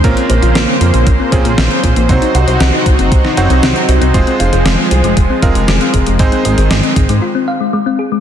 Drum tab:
HH |xxxxx-xxx-xxxxxx|xxxxx-xxx-xxxxxx|xxxxx-xxx-xxxxxx|xxxxxxxx--------|
SD |----o-------o---|----o----o--o---|----o-------o---|----o-----------|
BD |o-------o-o---o-|o-----o-o-------|o-------o-o---o-|o-----o---------|